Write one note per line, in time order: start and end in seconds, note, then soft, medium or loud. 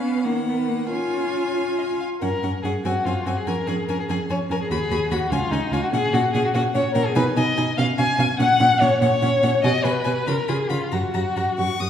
0.00 0.26 B3 medium
0.00 0.26 C#4 medium
0.00 0.26 B4 medium
0.00 0.26 F5 soft
0.24 0.93 D#3 medium
0.24 0.46 A#3 medium
0.24 0.58 A#4 soft
0.24 0.91 F#5 soft
0.47 0.70 B3 medium
0.57 0.90 B4 soft
0.69 0.91 A#3 medium
0.91 2.02 C#4 medium
0.91 1.98 F4 medium
0.91 1.51 C#5 soft
0.91 1.99 G#5 soft
1.57 1.65 C#5 medium
1.78 1.86 D#5 soft
2.00 2.08 F5 soft
2.21 2.30 F#2 medium
2.21 2.30 C#4 medium
2.21 2.60 A#4 medium
2.21 2.30 F#5 medium
2.43 2.51 F#2 medium
2.43 2.51 C#4 soft
2.43 2.51 F#5 soft
2.63 2.71 F#2 medium
2.63 2.72 C#4 soft
2.63 2.71 G#4 medium
2.63 2.73 F#5 soft
2.84 2.92 F#2 medium
2.84 2.93 C4 soft
2.84 3.06 F#4 medium
2.84 2.93 G#5 medium
3.05 3.13 F#2 medium
3.05 3.14 C4 medium
3.05 3.27 F4 medium
3.05 3.14 G#5 soft
3.25 3.34 F#2 medium
3.25 3.34 C4 soft
3.25 3.38 F#4 medium
3.25 3.35 G#5 soft
3.37 3.49 G#4 medium
3.46 3.54 F2 medium
3.46 3.55 C#4 medium
3.46 3.69 A#4 medium
3.46 3.55 G#5 medium
3.67 3.76 F2 medium
3.67 3.76 C#4 medium
3.67 3.87 G#4 medium
3.67 3.75 G#5 soft
3.88 3.96 F2 medium
3.88 3.97 C#4 soft
3.88 3.98 A#4 medium
3.88 3.97 G#5 soft
4.00 4.04 G#4 medium
4.09 4.17 F2 medium
4.09 4.17 C#4 medium
4.09 4.18 G#4 medium
4.09 4.18 G#5 medium
4.29 4.37 F2 medium
4.29 4.38 C#4 medium
4.29 4.38 C#5 medium
4.29 4.38 G#5 soft
4.50 4.58 F2 medium
4.50 4.58 C#4 medium
4.50 4.55 A#4 medium
4.50 4.59 G#5 medium
4.61 4.70 G#4 medium
4.70 4.78 D#2 medium
4.70 4.79 F#4 medium
4.70 5.13 G#4 medium
4.70 4.79 B5 medium
4.90 4.98 D#2 medium
4.90 4.99 F#4 medium
4.90 4.99 B5 medium
5.11 5.19 D#2 medium
5.11 5.19 F#4 medium
5.11 5.32 F#4 medium
5.11 5.19 B5 medium
5.31 5.39 C#2 medium
5.31 5.39 C#4 medium
5.31 5.53 F4 medium
5.31 5.40 G#5 medium
5.51 5.59 C#2 medium
5.51 5.59 C#4 medium
5.51 5.74 D#4 medium
5.51 5.60 G#5 medium
5.72 5.80 C#2 medium
5.72 5.80 C#4 medium
5.72 5.82 F4 medium
5.72 5.81 G#5 medium
5.83 5.87 F#4 medium
5.92 6.01 A#2 medium
5.92 6.00 C#4 medium
5.92 6.14 G#4 loud
5.92 6.02 F#5 medium
6.13 6.21 A#2 medium
6.13 6.21 C#4 medium
6.13 6.32 F#4 medium
6.13 6.22 F#5 medium
6.33 6.42 A#2 medium
6.33 6.42 C#4 medium
6.33 6.43 G#4 medium
6.33 6.43 F#5 medium
6.45 6.49 F#4 medium
6.54 6.62 A#2 medium
6.54 6.63 C#4 medium
6.54 6.62 F#4 loud
6.54 6.63 F#5 medium
6.74 6.82 A#2 medium
6.74 6.82 C#4 medium
6.74 6.94 C#5 loud
6.74 6.83 F#5 medium
6.94 7.03 A#2 medium
6.94 7.03 C#4 medium
6.94 7.07 A#4 medium
6.94 7.03 F#5 medium
7.06 7.15 G#4 medium
7.15 7.24 B2 medium
7.15 7.24 D#4 medium
7.15 7.24 B4 loud
7.15 7.23 G#5 medium
7.36 7.44 B2 medium
7.36 7.44 D#4 medium
7.36 7.77 D#5 loud
7.36 7.45 G#5 medium
7.57 7.65 B2 medium
7.57 7.65 D#4 medium
7.57 7.65 G#5 medium
7.77 7.86 B2 medium
7.77 7.86 C#4 medium
7.77 7.85 F5 loud
7.77 7.86 F5 medium
7.98 8.06 B2 medium
7.98 8.06 C#4 medium
7.98 8.06 F5 medium
7.98 8.38 G#5 loud
8.18 8.26 B2 medium
8.18 8.26 C#4 medium
8.18 8.27 F5 medium
8.39 8.47 A#2 medium
8.39 8.47 C#4 medium
8.39 8.82 F#5 loud
8.39 8.48 F#5 medium
8.60 8.68 A#2 medium
8.60 8.68 C#4 medium
8.60 8.68 F#5 medium
8.80 8.89 A#2 medium
8.80 8.88 C#4 medium
8.80 9.00 C#5 loud
8.80 8.89 F#5 medium
9.00 9.09 A#2 medium
9.00 9.08 C#4 medium
9.00 9.62 C#5 loud
9.00 9.10 F#5 medium
9.22 9.30 A#2 medium
9.22 9.30 C#4 medium
9.22 9.30 F#5 medium
9.42 9.50 A#2 medium
9.42 9.51 C#4 medium
9.42 9.51 F#5 medium
9.63 9.71 B2 medium
9.63 9.72 F#4 medium
9.63 9.86 D#5 loud
9.63 9.72 G#5 medium
9.84 9.93 B2 medium
9.84 9.93 F#4 medium
9.84 10.29 B4 medium
9.84 9.92 G#5 medium
10.04 10.13 B2 medium
10.04 10.14 F#4 medium
10.04 10.12 G#5 medium
10.27 10.35 C#3 medium
10.27 10.36 F4 medium
10.27 10.50 A#4 loud
10.27 10.35 B5 medium
10.48 10.56 C#3 medium
10.48 10.57 F4 medium
10.48 10.71 G#4 medium
10.48 10.56 B5 medium
10.70 10.78 C#3 medium
10.70 10.94 F4 medium
10.70 10.78 F4 medium
10.70 10.78 B5 soft
10.92 11.00 F#2 medium
10.92 11.90 F#4 medium
10.92 11.01 F#4 medium
10.92 11.00 A#5 medium
11.14 11.22 F#2 medium
11.14 11.23 F#4 medium
11.14 11.22 A#5 soft
11.36 11.44 F#2 medium
11.36 11.44 F#4 soft
11.36 11.45 A#5 soft
11.58 11.67 F#2 medium
11.58 11.66 F#4 medium
11.58 11.82 C#6 medium
11.80 11.88 F#2 medium
11.80 11.89 F#4 medium
11.80 11.90 D#6 medium